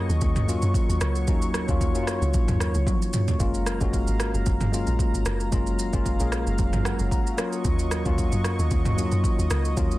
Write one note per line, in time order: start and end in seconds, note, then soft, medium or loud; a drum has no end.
0.00 0.47 F#3 medium
0.00 3.36 F#3 medium
0.00 0.48 A#3 medium
0.00 0.48 C#4 medium
0.00 0.49 F4 loud
0.00 0.31 G#4 loud
0.00 0.99 D#5 medium
0.00 3.36 C#6 medium
0.09 0.21 D#2 loud
0.09 shaker medium
0.21 0.60 D#2 medium
0.21 kick loud
0.21 shaker medium
0.36 mid tom loud
0.36 shaker medium
0.47 1.12 F#3 medium
0.47 1.13 A#3 medium
0.47 1.13 C#4 medium
0.47 1.13 F4 medium
0.47 shaker medium
0.62 0.74 F#2 medium
0.62 shaker soft
0.74 kick loud
0.74 shaker medium
0.89 1.00 D#2 medium
0.89 shaker medium
1.01 1.29 C#2 loud
1.01 3.38 C#5 medium
1.01 cross-stick loud
1.01 shaker loud
1.15 shaker medium
1.27 1.66 D#2 loud
1.27 1.59 F#3 medium
1.27 1.60 A#3 medium
1.27 1.60 C#4 medium
1.27 1.61 D#4 loud
1.27 kick loud
1.27 shaker medium
1.42 shaker medium
1.54 cross-stick medium
1.54 shaker loud
1.68 1.97 D#2 medium
1.68 1.89 F#3 medium
1.68 1.89 A#3 medium
1.68 1.90 C#4 medium
1.68 1.90 F4 loud
1.68 kick medium
1.68 shaker medium
1.81 kick loud
1.81 shaker medium
1.94 2.20 F#2 medium
1.94 2.79 F#3 medium
1.94 2.80 A#3 medium
1.94 2.80 C#4 medium
1.94 2.02 E4 medium
1.94 shaker medium
2.03 2.84 F4 medium
2.07 cross-stick medium
2.07 shaker medium
2.22 2.33 C#2 medium
2.22 shaker medium
2.34 2.48 A#1 medium
2.34 kick loud
2.34 shaker medium
2.48 2.73 D#2 medium
2.48 mid tom loud
2.48 shaker medium
2.60 cross-stick medium
2.60 shaker medium
2.74 2.86 C#2 medium
2.74 shaker soft
2.87 kick loud
2.87 high tom medium
2.87 shaker medium
3.02 shaker medium
3.13 mid tom medium
3.13 shaker loud
3.28 floor tom medium
3.28 shaker medium
3.39 3.78 F#1 loud
3.39 9.98 F#3 medium
3.39 3.72 G#3 medium
3.39 3.72 A#3 medium
3.39 3.73 C#4 medium
3.39 3.73 F4 loud
3.39 5.50 F5 medium
3.39 7.34 A#5 medium
3.39 kick loud
3.39 shaker medium
3.54 shaker medium
3.66 cross-stick medium
3.66 shaker loud
3.80 4.06 F#1 loud
3.80 4.54 G#3 medium
3.80 4.55 A#3 medium
3.80 4.55 C#4 medium
3.80 4.56 F#4 medium
3.80 kick loud
3.80 shaker medium
3.93 kick loud
3.93 shaker medium
4.07 4.32 G#1 medium
4.07 shaker medium
4.20 cross-stick medium
4.20 shaker medium
4.34 4.45 F#1 loud
4.34 shaker medium
4.46 4.85 F#1 loud
4.46 kick loud
4.46 shaker medium
4.61 mid tom loud
4.61 shaker medium
4.72 5.37 G#3 medium
4.72 5.37 A#3 medium
4.72 5.38 C#4 medium
4.72 5.38 F4 medium
4.72 shaker medium
4.87 4.98 A#1 medium
4.87 shaker soft
4.99 kick loud
4.99 shaker medium
5.14 5.25 G#1 medium
5.14 shaker medium
5.26 5.51 F#1 loud
5.26 cross-stick loud
5.26 shaker loud
5.40 shaker medium
5.51 5.91 F#1 loud
5.51 5.84 G#3 medium
5.51 5.85 A#3 medium
5.51 5.85 C#4 medium
5.51 5.85 F4 loud
5.51 7.36 F5 medium
5.51 kick loud
5.51 shaker medium
5.67 shaker medium
5.79 shaker loud
5.92 6.18 F#1 medium
5.92 6.14 G#3 medium
5.92 6.14 A#3 medium
5.92 6.14 C#4 medium
5.92 6.15 F4 loud
5.92 kick loud
5.92 shaker medium
6.06 kick loud
6.06 shaker medium
6.19 6.45 A#1 medium
6.19 7.04 G#3 medium
6.19 7.04 A#3 medium
6.19 7.05 C#4 medium
6.19 7.05 G#4 medium
6.19 shaker medium
6.32 cross-stick medium
6.32 shaker medium
6.47 6.58 F#1 medium
6.47 shaker medium
6.58 6.72 F1 loud
6.58 kick loud
6.58 shaker medium
6.73 6.98 G#1 medium
6.73 mid tom loud
6.73 shaker medium
6.85 7.10 F#5 medium
6.85 cross-stick loud
6.85 shaker medium
6.99 7.11 F#1 medium
6.99 shaker medium
7.11 7.61 A#5 medium
7.11 kick loud
7.11 shaker medium
7.27 shaker medium
7.37 7.91 F#3 medium
7.37 7.91 A#3 medium
7.37 7.92 C#4 medium
7.37 7.92 F4 loud
7.37 9.98 D#5 medium
7.37 9.98 C#6 medium
7.37 cross-stick loud
7.37 shaker loud
7.53 shaker medium
7.65 8.03 D#2 loud
7.65 kick loud
7.65 shaker medium
7.79 shaker medium
7.91 cross-stick medium
7.91 shaker loud
8.05 8.31 D#2 loud
8.05 8.79 F#3 medium
8.05 8.80 A#3 medium
8.05 8.80 C#4 medium
8.05 8.80 F4 loud
8.05 kick loud
8.05 shaker medium
8.18 kick loud
8.18 shaker medium
8.32 8.57 F#2 medium
8.32 shaker medium
8.44 cross-stick medium
8.44 shaker medium
8.59 8.70 D#2 medium
8.59 shaker medium
8.71 9.10 D#2 loud
8.71 kick loud
8.71 shaker medium
8.85 mid tom loud
8.85 shaker medium
8.96 9.62 F#3 medium
8.96 9.62 A#3 medium
8.96 9.63 C#4 medium
8.96 9.05 D#4 medium
8.96 shaker medium
9.05 9.66 F4 medium
9.12 9.23 F#2 medium
9.12 shaker soft
9.24 kick loud
9.24 shaker medium
9.39 9.50 D#2 medium
9.39 shaker medium
9.50 9.75 C#2 loud
9.50 cross-stick loud
9.50 shaker loud
9.65 shaker medium
9.76 9.98 D#2 loud
9.76 9.98 F#3 medium
9.76 9.98 A#3 medium
9.76 9.98 C#4 medium
9.76 9.98 F4 loud
9.76 kick loud
9.76 shaker medium
9.91 shaker medium